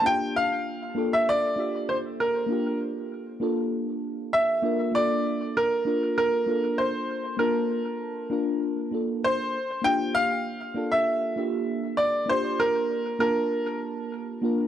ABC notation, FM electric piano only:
X:1
M:4/4
L:1/8
Q:1/4=98
K:Bblyd
V:1 name="FM electric piano"
[B,DFG]3 [B,DFA]2 [B,DFG] z2 | [B,DFG]3 [B,DFA]2 z2 [B,DFB] | [B,DFA]3 [B,DFB]2 [B,DFA] z2 | [B,DFa]3 [B,DFB]2 [B,DFA] z2 |
[B,DFG]3 [B,DFA]2 [B,DFG] z2 | [B,DFG]3 [B,DFa]2 z2 [B,DFB] |]